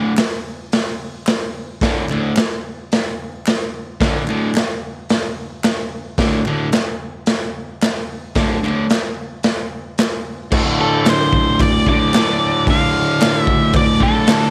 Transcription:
Already playing: overdriven electric guitar D2 A2 D3
0.17 snare, clap, open hi-hat
0.72 snare, open hi-hat
1.27 snare, clap, open hi-hat
1.81 overdriven electric guitar D2 A2 D3, kick, snare, open hi-hat
2.09 overdriven electric guitar D2 A2 D3, clap
2.36 snare, clap, open hi-hat
2.92 snare, open hi-hat
3.46 snare, clap, open hi-hat
4.00 overdriven electric guitar D2 A2 D3, kick, snare, open hi-hat
4.28 overdriven electric guitar D2 A2 D3, clap
4.55 snare, clap, open hi-hat
5.09 snare, open hi-hat
5.63 snare, clap, open hi-hat
6.18 overdriven electric guitar D2 A2 D3, kick, snare, open hi-hat
6.46 overdriven electric guitar D2 A2 D3, clap
6.72 snare, clap, open hi-hat
7.26 snare, open hi-hat
7.81 snare, clap, open hi-hat
8.35 overdriven electric guitar D2 A2 D3, kick, snare, open hi-hat
8.63 overdriven electric guitar D2 A2 D3, clap
8.90 snare, clap, open hi-hat
9.43 snare, open hi-hat
9.98 snare, clap, open hi-hat
10.51 overdriven electric guitar D2 A2 D3, kick, crash
10.81 lead electric guitar A4
11.05 snare, clap, open hi-hat
11.09 lead electric guitar C5
11.33 kick
11.59 lead electric guitar D5, kick, clap, open hi-hat
11.86 overdriven electric guitar D2 A2 D3, lead electric guitar D5, kick
12.13 overdriven electric guitar D2 A2 D3, snare, clap, open hi-hat
12.67 overdriven electric guitar D2 A2 D3, lead electric guitar F5, kick, open hi-hat
13.21 snare, clap, open hi-hat
13.38 lead electric guitar E5
13.47 kick
13.73 lead electric guitar D5, kick, clap, open hi-hat
14.00 overdriven electric guitar D2 A2 D3, lead electric guitar A4, kick
14.27 overdriven electric guitar D2, snare, clap, open hi-hat
14.31 overdriven electric guitar A2 D3

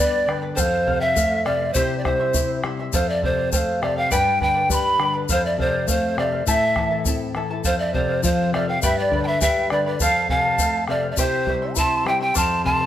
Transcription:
Already playing: nylon-string guitar G2, charango B4 G5, quena D5, pan flute D5
0.00 nylon-string guitar B3, charango D5 B5
0.27 nylon-string guitar D3, charango B4 D5 G5 B5, bombo rim
0.42 charango B4 D5 B5
0.55 nylon-string guitar F2, charango A4 C5 F5, pan flute C5, quena G5, bombo low, shaker
0.60 quena F5
0.86 nylon-string guitar C3, charango A4 C5 F5, bombo low
1.01 charango C5 F5, pan flute E5, quena F5 G5
1.16 nylon-string guitar A3, charango A4 C5 F5, bombo low, shaker
1.44 nylon-string guitar C3, charango A4 C5 F5, pan flute D5, quena E5, bombo rim
1.59 charango C5 F5
1.74 nylon-string guitar C3, charango E4 G4 C5 E5 C6, pan flute C5, quena C5, bombo low, shaker
1.98 quena D5, pan flute D5
2.04 nylon-string guitar G3, charango E4 C5 E5 C6, pan flute C5, quena C5, bombo rim, bombo low
2.20 charango E4 E5 C6
2.34 nylon-string guitar E4, charango E4 C5 E5 C6, bombo low, shaker
2.64 nylon-string guitar G3, charango E4 C5 E5 C6, bombo rim
2.79 charango E4 E5 C6
2.93 nylon-string guitar F2, charango A4 C5 F5, pan flute C5, quena F5, bombo low, shaker
3.08 pan flute D5, quena E5
3.22 nylon-string guitar C3, charango A4 C5 F5, pan flute C5, quena D5, bombo low
3.38 charango C5 F5
3.52 nylon-string guitar A3, charango A4 C5 F5, pan flute C5, quena G5, bombo low, shaker
3.57 quena F5
3.82 nylon-string guitar C3, charango A4 C5 F5, pan flute D5, quena E5, bombo rim
3.96 charango C5 F5, pan flute F5, quena G5
4.11 nylon-string guitar G2, charango G4 B4 D5 G5 B5, pan flute G5, quena G#5, bombo low, shaker
4.17 quena G5
4.40 nylon-string guitar D3, charango B4 D5 G5 B5, pan flute G5, quena G#5, bombo low
4.45 quena G5
4.54 charango B4 D5 B5
4.70 nylon-string guitar G3, charango B4 D5 G5 B5, pan flute B5, quena C6, bombo low, shaker
4.76 quena B5
4.99 nylon-string guitar D3, charango B4 D5 G5 B5, bombo rim
5.14 charango B4 D5 B5
5.29 nylon-string guitar F2, charango A4 C5 F5, pan flute C5, quena F5, bombo low, shaker
5.45 pan flute D5, quena E5
5.58 nylon-string guitar C3, charango A4 C5 F5, pan flute C5, quena D5, bombo low
5.73 charango C5 F5
5.87 nylon-string guitar A3, charango A4 C5 F5, pan flute C5, quena F5, bombo low, shaker
6.17 nylon-string guitar C3, charango A4 C5 F5, pan flute D5, quena E5 F5, bombo rim
6.32 charango C5 F5
6.47 nylon-string guitar A2, charango E4 A4 C5 E5 A5, quena E5, pan flute E5, bombo low, shaker
6.76 nylon-string guitar E3, charango E4 A4 E5 A5, bombo rim, bombo low
6.91 charango E4 A4 A5
7.05 nylon-string guitar C4, charango E4 A4 E5 A5, bombo low, shaker
7.35 nylon-string guitar E3, charango E4 A4 E5 A5, bombo rim
7.51 charango E4 A4 A5
7.64 nylon-string guitar F2, charango A4 C5 F5, pan flute C5, quena F5, bombo low, shaker
7.79 pan flute D5, quena E5
7.94 nylon-string guitar C3, charango A4 C5 F5, pan flute C5, quena D5, bombo low
8.09 charango C5 F5
8.23 nylon-string guitar F3, charango A4 C5 F5, pan flute C5, quena F5, bombo low, shaker
8.53 nylon-string guitar C3, charango A4 C5 F5, pan flute D5, quena E5, bombo rim
8.68 charango C5 F5, pan flute F5, quena G5
8.82 nylon-string guitar G2, charango G4 B4 D5 G5 B5, pan flute E5, quena G5, bombo low, shaker
8.97 quena D5, pan flute D5
9.11 nylon-string guitar D3, charango B4 D5 G5 B5, bombo low
9.23 quena E5 A5, pan flute G5, charango B5
9.28 charango B4 D5, pan flute E5
9.41 nylon-string guitar G3, charango B4 D5 G5 B5, pan flute E5, quena G5 G#5, bombo low, shaker
9.70 nylon-string guitar D3, charango B4 D5 G5 B5, quena D5, pan flute D5, bombo rim
9.86 charango B4 D5 B5, quena D5, pan flute D5
10.00 nylon-string guitar F2, charango A4 C5 F5, pan flute F5, quena A5, bombo low, shaker
10.29 nylon-string guitar C3, charango A4 C5 F5, pan flute F5, quena A5, bombo low
10.45 charango C5 F5
10.58 nylon-string guitar A3, charango A4 C5 F5, bombo low, shaker
10.88 nylon-string guitar C3, charango A4 C5 F5, pan flute D5, quena E5, bombo rim
11.03 charango C5 F5
11.10 pan flute D5, quena E5
11.17 nylon-string guitar C3, charango E4 G4 C5 E5 C6, quena C5, pan flute C5, bombo low, shaker
11.47 nylon-string guitar G3, charango E4 C5 E5 C6, bombo low
11.62 charango E4 E5 C6
11.76 nylon-string guitar E4, charango E4 C5 E5 C6, pan flute A5, quena C6, bombo low, shaker
12.05 nylon-string guitar G3, charango E4 C5 E5 C6, quena G5, pan flute G5, bombo rim
12.20 charango E4 E5 C6, quena G5, pan flute G5
12.35 nylon-string guitar F2, charango A4 C5 F5, pan flute A5, quena C6 D6, bombo low, shaker
12.65 nylon-string guitar C3, charango A4 C5 F5, pan flute A5, quena C6, bombo low
12.79 charango C5 F5

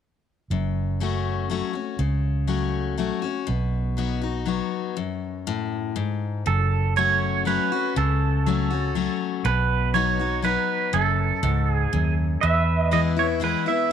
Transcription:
0.50 fingered electric bass F#1, steel-string acoustic guitar F#2
1.00 steel-string acoustic guitar F#3 A3 C#4 F#4
1.50 steel-string acoustic guitar F#3 A3 C#4 F#4
1.73 steel-string acoustic guitar C#4 F#4
1.99 fingered electric bass C#2, steel-string acoustic guitar C#3
2.47 steel-string acoustic guitar F#3 A3 C#4 F#4
2.98 steel-string acoustic guitar F#3 A3 C#4 F#4
3.22 steel-string acoustic guitar C#4 F#4
3.47 fingered electric bass B1, steel-string acoustic guitar B2
3.97 steel-string acoustic guitar F#3 B3 D#4 F#4
4.21 steel-string acoustic guitar D#4 F#4
4.46 steel-string acoustic guitar F#3 B3 D#4 F#4
4.97 steel-string acoustic guitar F#2
5.47 steel-string acoustic guitar A2
5.96 steel-string acoustic guitar G#2
6.46 fingered electric bass F#1, steel-string acoustic guitar F#2, pedal steel guitar A4
6.96 steel-string acoustic guitar F#3 A3 C#4 F#4, pedal steel guitar C#5
7.45 steel-string acoustic guitar F#3 A3 C#4 F#4, pedal steel guitar B4
7.72 steel-string acoustic guitar C#4 F#4
7.96 fingered electric bass C#2, steel-string acoustic guitar C#3, pedal steel guitar A4
8.46 steel-string acoustic guitar F#3 A3 C#4 F#4
8.70 steel-string acoustic guitar C#4 F#4
8.95 steel-string acoustic guitar F#3 A3 C#4 F#4
9.45 fingered electric bass B1, steel-string acoustic guitar B2, pedal steel guitar B4
9.94 steel-string acoustic guitar F#3 B3 D#4 F#4, pedal steel guitar C#5
10.19 steel-string acoustic guitar D#4 F#4
10.42 steel-string acoustic guitar F#3 B3 D#4 F#4, pedal steel guitar B4
10.93 fingered electric bass F#1, steel-string acoustic guitar F#2, pedal steel guitar A4
11.43 fingered electric bass C#2, steel-string acoustic guitar G#2
11.73 pedal steel guitar G#4
11.93 fingered electric bass D#2, steel-string acoustic guitar F#2
12.41 steel-string acoustic guitar E2, fingered electric bass E2, pedal steel guitar B4 E5
12.79 pedal steel guitar D#5
12.91 steel-string acoustic guitar E3 G#3 B3 E4, pedal steel guitar D#5
13.16 steel-string acoustic guitar B3 E4, pedal steel guitar C#5
13.40 steel-string acoustic guitar E3 G#3 B3 E4
13.44 pedal steel guitar B4
13.66 steel-string acoustic guitar B3 E4, pedal steel guitar E5

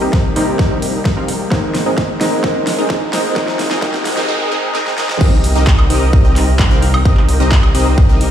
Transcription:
Already playing: grand piano C3 G3 A#3 C4 D#4, riser
0.02 detuned saw bass C2, supersaw synth C4 D#4 G4 A#4 D#5
0.13 kick, snare
0.35 detuned saw bass C2, grand piano C3 G3 A#3 C4 D#4, supersaw synth C4 D#4 G4 A#4 D#5, open hi-hat
0.59 kick, snare
0.71 detuned saw bass C2, supersaw synth C4 D#4 G4 A#4 D#5
0.82 open hi-hat
1.05 kick, snare
1.17 detuned saw bass C2, supersaw synth C4 D#4 G4 A#4 F5
1.28 open hi-hat
1.50 detuned saw bass G#1, grand piano G#2 G#3 A#3 C4 D#4, supersaw synth C4 D#4 G#4 A#4 D#5, kick, snare
1.75 snare, open hi-hat
1.86 detuned saw bass G#1, supersaw synth C4 D#4 G#4 A#4 D#5
1.98 kick, snare
2.20 detuned saw bass G#1, grand piano G#2 G#3 A#3 C4 D#4, supersaw synth C4 D#4 G#4 A#4 D#5, snare, open hi-hat
2.43 detuned saw bass G#1, grand piano G#2 G#3 A#3 C4 D#4, supersaw synth C4 D#4 G#4 A#4 D#5, kick, snare
2.67 snare, open hi-hat
2.78 detuned saw bass G#1, supersaw synth C4 D#4 G#4 A#4 D#5
2.90 kick, snare
3.12 detuned saw bass G#1, grand piano G#2 G#3 A#3 C4 D#4, supersaw synth C4 D#4 G#4 A#4 D#5, snare, open hi-hat
3.35 detuned saw bass G#1, grand piano G#2 G#3 A#3 C4 D#4, supersaw synth C4 D#4 G#4 A#4 D#5, kick, snare, noise sweep
3.48 snare
3.59 snare, open hi-hat
3.71 detuned saw bass G#1, supersaw synth C4 D#4 G#4 A#4 D#5, snare
3.81 detuned saw bass G#1, grand piano G#2 G#3 A#3 C4 D#4, supersaw synth C4 D#4 A#4 D#5, kick, snare
3.94 snare
4.05 snare, open hi-hat
4.17 detuned saw bass G#1, supersaw synth C4 D#4 G#4 A#4 D#5, snare
4.28 supersaw synth C4 D#4 G#4 A#4 D#5
4.52 supersaw synth C4 D#4 G#4 A#4 D#5
4.75 supersaw synth C4 D#4 G#4 A#4 D#5, snare
4.86 snare
4.98 supersaw synth C4 D#4 G#4 A#4 D#5, snare
5.09 snare
5.21 detuned saw bass C2, supersaw synth C4 D#4 G4 A#4 D#5, kick, crash
5.44 open hi-hat
5.55 detuned saw bass C2, supersaw synth C4 D#4 G4 A#4 D#5
5.67 kick, clap
5.79 high woodblock
5.90 detuned saw bass C2, supersaw synth C4 D#4 G4 A#4 D#5, open hi-hat
6.13 kick
6.25 detuned saw bass C2, supersaw synth C4 D#4 G4 A#4 D#5
6.36 clap, open hi-hat
6.59 kick, clap
6.71 detuned saw bass C2, supersaw synth C4 D#4 G4 A#4 F5
6.82 open hi-hat
6.94 high woodblock
7.05 detuned saw bass C2, supersaw synth C4 D#4 G4 A#4 D#5, kick
7.17 clap
7.29 open hi-hat
7.40 detuned saw bass C2, supersaw synth C4 D#4 G4 A#4 D#5
7.52 kick, clap
7.63 high woodblock
7.75 detuned saw bass C2, supersaw synth C4 D#4 G4 A#4 D#5, open hi-hat
7.98 kick
8.09 detuned saw bass C2, supersaw synth C4 D#4 G4 A#4 D#5
8.21 open hi-hat

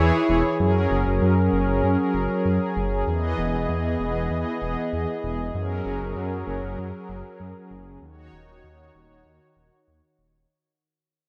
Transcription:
Already playing: analog synth pad E3 E4 G#4 C#5
0.00 detuned saw bass E2
0.29 detuned saw bass E1
0.60 detuned saw bass F#2, analog synth pad F#3 C#4 G#4 A#4
0.91 detuned saw bass F#1
1.07 detuned saw bass F#1
1.22 detuned saw bass F#2
1.53 detuned saw bass F#1
1.68 detuned saw bass F#1
1.84 detuned saw bass F#2
2.14 detuned saw bass F#1
2.45 detuned saw bass F#2
2.76 detuned saw bass F#1
3.07 detuned saw bass E2, analog synth pad E3 B3 D#5
3.38 detuned saw bass E1
3.54 detuned saw bass E1
3.69 detuned saw bass E2
4.00 detuned saw bass E1
4.16 detuned saw bass E1
4.31 detuned saw bass E2
4.62 detuned saw bass E1
4.93 detuned saw bass E2
5.24 detuned saw bass E1
5.54 detuned saw bass F#2, analog synth pad F#3 C#4 A#4
5.86 detuned saw bass F#1
6.01 detuned saw bass F#1
6.16 detuned saw bass F#2
6.47 detuned saw bass F#1
6.63 detuned saw bass F#1
6.78 detuned saw bass F#2
7.09 detuned saw bass F#1
7.40 detuned saw bass F#2
7.71 detuned saw bass F#1
8.02 detuned saw bass D#2, analog synth pad D#3 D#4 F#4 C#5
8.33 detuned saw bass D#1
8.49 detuned saw bass D#1
8.64 detuned saw bass D#2
8.95 detuned saw bass D#1
9.10 detuned saw bass D#1
9.26 detuned saw bass D#2
9.57 detuned saw bass D#1
9.88 detuned saw bass D#2
10.19 detuned saw bass D#1

